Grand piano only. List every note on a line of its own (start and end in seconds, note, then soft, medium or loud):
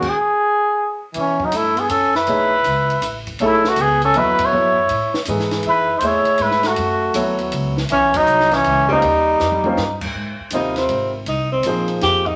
2.28 2.51 A3 soft
2.28 2.51 D#4 soft
2.28 2.51 G#4 soft
2.28 2.51 C#5 soft
2.28 2.51 E5 medium
3.40 3.63 A3 medium
3.40 3.63 D#4 medium
3.40 3.63 G#4 soft
3.40 3.63 C#5 medium
3.40 3.64 E5 medium
4.16 4.51 F#3 medium
4.16 4.51 B3 medium
4.16 4.52 E4 medium
4.16 4.53 A4 medium
4.16 4.74 D#5 medium
4.53 4.75 F#3 medium
4.53 4.75 B3 medium
4.53 4.76 E4 medium
4.53 4.76 A4 medium
4.53 4.76 C#5 medium
5.28 5.85 E3 medium
5.28 5.86 D#4 soft
5.28 5.86 G#4 medium
5.28 5.86 A4 soft
5.28 5.86 B4 medium
6.03 6.60 A3 medium
6.03 6.60 G#4 medium
6.03 6.61 C#5 soft
6.03 6.60 D#5 soft
6.03 6.61 E5 medium
7.15 7.72 F#3 medium
7.15 7.73 B3 soft
7.15 7.73 E4 soft
7.15 7.72 A4 soft
7.15 7.73 C#5 medium
8.90 9.01 A#3 medium
8.90 9.02 C#4 medium
8.90 9.02 F4 medium
8.90 9.02 G4 soft
8.90 9.02 C5 medium
9.66 9.77 A#3 medium
9.66 9.77 C#4 medium
9.66 9.77 F4 medium
9.66 9.77 G4 medium
9.66 9.77 C5 medium
10.53 11.11 C3 soft
10.53 11.10 G3 medium
10.53 11.11 F4 medium
10.53 11.11 A#4 medium
10.53 11.11 C5 medium
11.66 12.23 F3 medium
11.66 12.23 A#3 soft
11.66 12.23 D#4 medium
11.66 12.24 G#4 medium
11.66 12.24 C5 medium